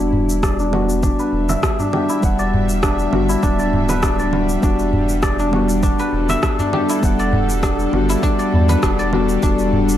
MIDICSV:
0, 0, Header, 1, 7, 480
1, 0, Start_track
1, 0, Key_signature, 1, "minor"
1, 0, Tempo, 600000
1, 1784, Time_signature, 4, 2, 24, 8
1, 7980, End_track
2, 0, Start_track
2, 0, Title_t, "Synth drone"
2, 0, Program_c, 0, 95
2, 0, Note_on_c, 0, 55, 73
2, 0, Note_on_c, 0, 62, 79
2, 0, Note_on_c, 0, 76, 85
2, 3699, Note_off_c, 0, 76, 0
2, 3709, Note_on_c, 0, 69, 88
2, 7540, Note_off_c, 0, 69, 0
2, 7547, Note_on_c, 0, 76, 85
2, 7980, Note_off_c, 0, 55, 0
2, 7980, Note_off_c, 0, 62, 0
2, 7980, Note_off_c, 0, 76, 0
2, 7980, End_track
3, 0, Start_track
3, 0, Title_t, "Guzheng"
3, 0, Program_c, 1, 107
3, 0, Note_on_c, 1, 62, 73
3, 344, Note_on_c, 1, 74, 96
3, 472, Note_off_c, 1, 62, 0
3, 475, Note_on_c, 1, 62, 70
3, 821, Note_off_c, 1, 62, 0
3, 824, Note_on_c, 1, 62, 76
3, 954, Note_on_c, 1, 71, 85
3, 1194, Note_on_c, 1, 76, 91
3, 1300, Note_off_c, 1, 76, 0
3, 1303, Note_on_c, 1, 76, 74
3, 1431, Note_off_c, 1, 62, 0
3, 1434, Note_on_c, 1, 62, 67
3, 1544, Note_on_c, 1, 67, 72
3, 1674, Note_on_c, 1, 64, 70
3, 1822, Note_off_c, 1, 74, 0
3, 1912, Note_on_c, 1, 74, 76
3, 2260, Note_off_c, 1, 62, 0
3, 2263, Note_on_c, 1, 62, 78
3, 2593, Note_off_c, 1, 71, 0
3, 2629, Note_off_c, 1, 64, 0
3, 2632, Note_on_c, 1, 64, 72
3, 2682, Note_off_c, 1, 76, 0
3, 2739, Note_off_c, 1, 62, 0
3, 2742, Note_on_c, 1, 62, 101
3, 2870, Note_off_c, 1, 74, 0
3, 2874, Note_on_c, 1, 74, 66
3, 3113, Note_on_c, 1, 71, 94
3, 3220, Note_off_c, 1, 62, 0
3, 3224, Note_on_c, 1, 62, 76
3, 3351, Note_off_c, 1, 74, 0
3, 3354, Note_on_c, 1, 74, 71
3, 3427, Note_off_c, 1, 67, 0
3, 3701, Note_off_c, 1, 62, 0
3, 3704, Note_on_c, 1, 62, 69
3, 4181, Note_off_c, 1, 74, 0
3, 4184, Note_on_c, 1, 74, 96
3, 4312, Note_off_c, 1, 62, 0
3, 4315, Note_on_c, 1, 62, 74
3, 4662, Note_off_c, 1, 62, 0
3, 4665, Note_on_c, 1, 62, 78
3, 4721, Note_off_c, 1, 64, 0
3, 4752, Note_off_c, 1, 71, 0
3, 4795, Note_on_c, 1, 71, 88
3, 5036, Note_on_c, 1, 76, 102
3, 5142, Note_off_c, 1, 76, 0
3, 5146, Note_on_c, 1, 76, 73
3, 5273, Note_off_c, 1, 62, 0
3, 5276, Note_on_c, 1, 62, 67
3, 5385, Note_on_c, 1, 67, 71
3, 5515, Note_on_c, 1, 64, 68
3, 5662, Note_off_c, 1, 74, 0
3, 5755, Note_on_c, 1, 74, 76
3, 6100, Note_off_c, 1, 62, 0
3, 6103, Note_on_c, 1, 62, 76
3, 6434, Note_off_c, 1, 71, 0
3, 6472, Note_off_c, 1, 64, 0
3, 6475, Note_on_c, 1, 64, 75
3, 6524, Note_off_c, 1, 76, 0
3, 6580, Note_off_c, 1, 62, 0
3, 6583, Note_on_c, 1, 62, 98
3, 6708, Note_off_c, 1, 74, 0
3, 6712, Note_on_c, 1, 74, 67
3, 6952, Note_on_c, 1, 71, 94
3, 7059, Note_off_c, 1, 62, 0
3, 7063, Note_on_c, 1, 62, 75
3, 7189, Note_off_c, 1, 74, 0
3, 7192, Note_on_c, 1, 74, 68
3, 7268, Note_off_c, 1, 67, 0
3, 7540, Note_off_c, 1, 62, 0
3, 7543, Note_on_c, 1, 62, 75
3, 7980, Note_off_c, 1, 62, 0
3, 7980, Note_off_c, 1, 64, 0
3, 7980, Note_off_c, 1, 71, 0
3, 7980, Note_off_c, 1, 74, 0
3, 7980, End_track
4, 0, Start_track
4, 0, Title_t, "Synth keys"
4, 0, Program_c, 2, 88
4, 0, Note_on_c, 2, 55, 85
4, 0, Note_on_c, 2, 59, 75
4, 0, Note_on_c, 2, 62, 78
4, 0, Note_on_c, 2, 66, 91
4, 28, Control_c, 2, 64, 127
4, 549, Note_off_c, 2, 55, 0
4, 554, Note_off_c, 2, 59, 0
4, 559, Note_off_c, 2, 62, 0
4, 565, Note_off_c, 2, 66, 0
4, 568, Note_on_c, 2, 55, 85
4, 578, Note_on_c, 2, 59, 77
4, 589, Note_on_c, 2, 62, 75
4, 599, Note_on_c, 2, 66, 95
4, 1750, Note_off_c, 2, 55, 0
4, 1755, Note_off_c, 2, 59, 0
4, 1760, Note_off_c, 2, 62, 0
4, 1765, Note_off_c, 2, 66, 0
4, 1766, Note_on_c, 2, 55, 87
4, 1778, Note_on_c, 2, 59, 74
4, 1787, Note_on_c, 2, 62, 73
4, 1799, Note_on_c, 2, 78, 84
4, 2469, Note_off_c, 2, 55, 0
4, 2475, Note_off_c, 2, 59, 0
4, 2479, Note_off_c, 2, 62, 0
4, 2485, Note_off_c, 2, 78, 0
4, 2485, Note_on_c, 2, 55, 84
4, 2496, Note_on_c, 2, 59, 75
4, 2506, Note_on_c, 2, 62, 78
4, 2517, Note_on_c, 2, 66, 95
4, 3668, Note_off_c, 2, 55, 0
4, 3674, Note_off_c, 2, 59, 0
4, 3678, Note_off_c, 2, 62, 0
4, 3683, Note_on_c, 2, 55, 77
4, 3684, Note_off_c, 2, 66, 0
4, 3694, Note_on_c, 2, 59, 78
4, 3706, Note_on_c, 2, 62, 72
4, 3717, Note_on_c, 2, 66, 87
4, 4387, Note_off_c, 2, 55, 0
4, 4393, Note_off_c, 2, 59, 0
4, 4399, Note_off_c, 2, 62, 0
4, 4404, Note_off_c, 2, 66, 0
4, 4407, Note_on_c, 2, 55, 86
4, 4419, Note_on_c, 2, 59, 81
4, 4429, Note_on_c, 2, 62, 77
4, 4439, Note_on_c, 2, 66, 101
4, 5589, Note_off_c, 2, 55, 0
4, 5595, Note_off_c, 2, 59, 0
4, 5600, Note_off_c, 2, 62, 0
4, 5605, Note_off_c, 2, 66, 0
4, 5606, Note_on_c, 2, 55, 85
4, 5617, Note_on_c, 2, 59, 74
4, 5627, Note_on_c, 2, 62, 76
4, 5638, Note_on_c, 2, 78, 90
4, 6308, Note_off_c, 2, 55, 0
4, 6314, Note_off_c, 2, 59, 0
4, 6319, Note_off_c, 2, 62, 0
4, 6325, Note_off_c, 2, 78, 0
4, 6327, Note_on_c, 2, 55, 85
4, 6338, Note_on_c, 2, 59, 77
4, 6349, Note_on_c, 2, 62, 83
4, 6360, Note_on_c, 2, 66, 94
4, 7274, Note_off_c, 2, 55, 0
4, 7279, Note_off_c, 2, 59, 0
4, 7285, Note_off_c, 2, 62, 0
4, 7290, Note_off_c, 2, 66, 0
4, 7297, Note_on_c, 2, 55, 82
4, 7301, Note_on_c, 2, 59, 73
4, 7307, Note_on_c, 2, 62, 72
4, 7312, Note_on_c, 2, 66, 85
4, 7514, Note_off_c, 2, 55, 0
4, 7516, Note_off_c, 2, 59, 0
4, 7519, Note_off_c, 2, 62, 0
4, 7522, Note_off_c, 2, 66, 0
4, 7524, Note_on_c, 2, 55, 82
4, 7534, Note_on_c, 2, 59, 75
4, 7546, Note_on_c, 2, 62, 75
4, 7557, Note_on_c, 2, 66, 89
4, 7980, Note_off_c, 2, 55, 0
4, 7980, Note_off_c, 2, 59, 0
4, 7980, Note_off_c, 2, 62, 0
4, 7980, Note_off_c, 2, 66, 0
4, 7980, End_track
5, 0, Start_track
5, 0, Title_t, "Analog synth bass"
5, 0, Program_c, 3, 38
5, 0, Note_on_c, 3, 28, 85
5, 903, Note_off_c, 3, 28, 0
5, 1062, Note_on_c, 3, 28, 104
5, 1249, Note_off_c, 3, 28, 0
5, 1785, Note_on_c, 3, 28, 89
5, 2461, Note_off_c, 3, 28, 0
5, 2504, Note_on_c, 3, 31, 91
5, 2690, Note_off_c, 3, 31, 0
5, 2744, Note_on_c, 3, 26, 84
5, 3661, Note_off_c, 3, 26, 0
5, 3704, Note_on_c, 3, 28, 84
5, 4743, Note_off_c, 3, 28, 0
5, 4903, Note_on_c, 3, 28, 103
5, 5090, Note_off_c, 3, 28, 0
5, 5623, Note_on_c, 3, 28, 90
5, 6300, Note_off_c, 3, 28, 0
5, 6344, Note_on_c, 3, 31, 93
5, 6530, Note_off_c, 3, 31, 0
5, 6824, Note_on_c, 3, 40, 83
5, 7010, Note_off_c, 3, 40, 0
5, 7063, Note_on_c, 3, 28, 79
5, 7500, Note_off_c, 3, 28, 0
5, 7543, Note_on_c, 3, 28, 86
5, 7980, Note_off_c, 3, 28, 0
5, 7980, End_track
6, 0, Start_track
6, 0, Title_t, "Udu"
6, 101, Note_on_c, 9, 64, 72
6, 181, Note_off_c, 9, 64, 0
6, 1434, Note_on_c, 9, 64, 81
6, 1514, Note_off_c, 9, 64, 0
6, 2030, Note_on_c, 9, 64, 74
6, 2110, Note_off_c, 9, 64, 0
6, 2986, Note_on_c, 9, 64, 82
6, 3066, Note_off_c, 9, 64, 0
6, 3944, Note_on_c, 9, 64, 78
6, 4024, Note_off_c, 9, 64, 0
6, 5273, Note_on_c, 9, 64, 94
6, 5353, Note_off_c, 9, 64, 0
6, 5864, Note_on_c, 9, 64, 82
6, 5944, Note_off_c, 9, 64, 0
6, 6821, Note_on_c, 9, 64, 79
6, 6901, Note_off_c, 9, 64, 0
6, 7783, Note_on_c, 9, 64, 74
6, 7863, Note_off_c, 9, 64, 0
6, 7980, End_track
7, 0, Start_track
7, 0, Title_t, "Drums"
7, 236, Note_on_c, 9, 82, 60
7, 316, Note_off_c, 9, 82, 0
7, 344, Note_on_c, 9, 36, 101
7, 345, Note_on_c, 9, 37, 93
7, 346, Note_on_c, 9, 82, 51
7, 424, Note_off_c, 9, 36, 0
7, 425, Note_off_c, 9, 37, 0
7, 426, Note_off_c, 9, 82, 0
7, 475, Note_on_c, 9, 82, 31
7, 555, Note_off_c, 9, 82, 0
7, 584, Note_on_c, 9, 64, 74
7, 664, Note_off_c, 9, 64, 0
7, 714, Note_on_c, 9, 82, 63
7, 794, Note_off_c, 9, 82, 0
7, 824, Note_on_c, 9, 36, 97
7, 824, Note_on_c, 9, 82, 50
7, 904, Note_off_c, 9, 36, 0
7, 904, Note_off_c, 9, 82, 0
7, 955, Note_on_c, 9, 82, 31
7, 1035, Note_off_c, 9, 82, 0
7, 1193, Note_on_c, 9, 64, 67
7, 1193, Note_on_c, 9, 82, 63
7, 1273, Note_off_c, 9, 64, 0
7, 1273, Note_off_c, 9, 82, 0
7, 1305, Note_on_c, 9, 36, 100
7, 1305, Note_on_c, 9, 37, 101
7, 1305, Note_on_c, 9, 82, 50
7, 1385, Note_off_c, 9, 36, 0
7, 1385, Note_off_c, 9, 37, 0
7, 1385, Note_off_c, 9, 82, 0
7, 1435, Note_on_c, 9, 82, 33
7, 1515, Note_off_c, 9, 82, 0
7, 1545, Note_on_c, 9, 64, 77
7, 1625, Note_off_c, 9, 64, 0
7, 1674, Note_on_c, 9, 82, 64
7, 1754, Note_off_c, 9, 82, 0
7, 1783, Note_on_c, 9, 82, 51
7, 1785, Note_on_c, 9, 36, 99
7, 1863, Note_off_c, 9, 82, 0
7, 1865, Note_off_c, 9, 36, 0
7, 1912, Note_on_c, 9, 82, 34
7, 1992, Note_off_c, 9, 82, 0
7, 2152, Note_on_c, 9, 82, 61
7, 2232, Note_off_c, 9, 82, 0
7, 2263, Note_on_c, 9, 37, 99
7, 2263, Note_on_c, 9, 82, 57
7, 2264, Note_on_c, 9, 36, 95
7, 2343, Note_off_c, 9, 37, 0
7, 2343, Note_off_c, 9, 82, 0
7, 2344, Note_off_c, 9, 36, 0
7, 2392, Note_on_c, 9, 82, 32
7, 2472, Note_off_c, 9, 82, 0
7, 2502, Note_on_c, 9, 64, 72
7, 2582, Note_off_c, 9, 64, 0
7, 2634, Note_on_c, 9, 82, 67
7, 2714, Note_off_c, 9, 82, 0
7, 2744, Note_on_c, 9, 36, 102
7, 2744, Note_on_c, 9, 82, 50
7, 2824, Note_off_c, 9, 36, 0
7, 2824, Note_off_c, 9, 82, 0
7, 2874, Note_on_c, 9, 82, 34
7, 2954, Note_off_c, 9, 82, 0
7, 3112, Note_on_c, 9, 64, 64
7, 3112, Note_on_c, 9, 82, 62
7, 3192, Note_off_c, 9, 64, 0
7, 3192, Note_off_c, 9, 82, 0
7, 3222, Note_on_c, 9, 37, 94
7, 3222, Note_on_c, 9, 82, 53
7, 3224, Note_on_c, 9, 36, 103
7, 3302, Note_off_c, 9, 37, 0
7, 3302, Note_off_c, 9, 82, 0
7, 3304, Note_off_c, 9, 36, 0
7, 3353, Note_on_c, 9, 82, 33
7, 3433, Note_off_c, 9, 82, 0
7, 3463, Note_on_c, 9, 64, 72
7, 3543, Note_off_c, 9, 64, 0
7, 3592, Note_on_c, 9, 82, 64
7, 3672, Note_off_c, 9, 82, 0
7, 3704, Note_on_c, 9, 36, 102
7, 3704, Note_on_c, 9, 82, 50
7, 3784, Note_off_c, 9, 36, 0
7, 3784, Note_off_c, 9, 82, 0
7, 3833, Note_on_c, 9, 82, 35
7, 3913, Note_off_c, 9, 82, 0
7, 4071, Note_on_c, 9, 82, 62
7, 4151, Note_off_c, 9, 82, 0
7, 4182, Note_on_c, 9, 37, 99
7, 4182, Note_on_c, 9, 82, 54
7, 4184, Note_on_c, 9, 36, 112
7, 4262, Note_off_c, 9, 37, 0
7, 4262, Note_off_c, 9, 82, 0
7, 4264, Note_off_c, 9, 36, 0
7, 4313, Note_on_c, 9, 82, 32
7, 4393, Note_off_c, 9, 82, 0
7, 4423, Note_on_c, 9, 64, 70
7, 4503, Note_off_c, 9, 64, 0
7, 4552, Note_on_c, 9, 82, 67
7, 4632, Note_off_c, 9, 82, 0
7, 4663, Note_on_c, 9, 82, 53
7, 4664, Note_on_c, 9, 36, 112
7, 4743, Note_off_c, 9, 82, 0
7, 4744, Note_off_c, 9, 36, 0
7, 4793, Note_on_c, 9, 82, 32
7, 4873, Note_off_c, 9, 82, 0
7, 5033, Note_on_c, 9, 64, 69
7, 5033, Note_on_c, 9, 82, 61
7, 5113, Note_off_c, 9, 64, 0
7, 5113, Note_off_c, 9, 82, 0
7, 5142, Note_on_c, 9, 37, 94
7, 5142, Note_on_c, 9, 82, 55
7, 5143, Note_on_c, 9, 36, 106
7, 5222, Note_off_c, 9, 37, 0
7, 5222, Note_off_c, 9, 82, 0
7, 5223, Note_off_c, 9, 36, 0
7, 5275, Note_on_c, 9, 82, 35
7, 5355, Note_off_c, 9, 82, 0
7, 5385, Note_on_c, 9, 64, 76
7, 5465, Note_off_c, 9, 64, 0
7, 5514, Note_on_c, 9, 82, 67
7, 5594, Note_off_c, 9, 82, 0
7, 5623, Note_on_c, 9, 36, 102
7, 5625, Note_on_c, 9, 82, 53
7, 5703, Note_off_c, 9, 36, 0
7, 5705, Note_off_c, 9, 82, 0
7, 5755, Note_on_c, 9, 82, 36
7, 5835, Note_off_c, 9, 82, 0
7, 5995, Note_on_c, 9, 82, 62
7, 6075, Note_off_c, 9, 82, 0
7, 6103, Note_on_c, 9, 36, 102
7, 6105, Note_on_c, 9, 37, 93
7, 6105, Note_on_c, 9, 82, 54
7, 6183, Note_off_c, 9, 36, 0
7, 6185, Note_off_c, 9, 37, 0
7, 6185, Note_off_c, 9, 82, 0
7, 6234, Note_on_c, 9, 82, 32
7, 6314, Note_off_c, 9, 82, 0
7, 6345, Note_on_c, 9, 64, 67
7, 6425, Note_off_c, 9, 64, 0
7, 6475, Note_on_c, 9, 82, 68
7, 6555, Note_off_c, 9, 82, 0
7, 6584, Note_on_c, 9, 36, 102
7, 6585, Note_on_c, 9, 82, 51
7, 6664, Note_off_c, 9, 36, 0
7, 6665, Note_off_c, 9, 82, 0
7, 6713, Note_on_c, 9, 82, 32
7, 6793, Note_off_c, 9, 82, 0
7, 6952, Note_on_c, 9, 64, 66
7, 6952, Note_on_c, 9, 82, 67
7, 7032, Note_off_c, 9, 64, 0
7, 7032, Note_off_c, 9, 82, 0
7, 7063, Note_on_c, 9, 36, 103
7, 7063, Note_on_c, 9, 37, 96
7, 7063, Note_on_c, 9, 82, 51
7, 7143, Note_off_c, 9, 36, 0
7, 7143, Note_off_c, 9, 37, 0
7, 7143, Note_off_c, 9, 82, 0
7, 7194, Note_on_c, 9, 82, 35
7, 7274, Note_off_c, 9, 82, 0
7, 7302, Note_on_c, 9, 64, 79
7, 7382, Note_off_c, 9, 64, 0
7, 7432, Note_on_c, 9, 82, 61
7, 7512, Note_off_c, 9, 82, 0
7, 7542, Note_on_c, 9, 82, 49
7, 7543, Note_on_c, 9, 36, 98
7, 7622, Note_off_c, 9, 82, 0
7, 7623, Note_off_c, 9, 36, 0
7, 7671, Note_on_c, 9, 82, 34
7, 7751, Note_off_c, 9, 82, 0
7, 7911, Note_on_c, 9, 82, 64
7, 7980, Note_off_c, 9, 82, 0
7, 7980, End_track
0, 0, End_of_file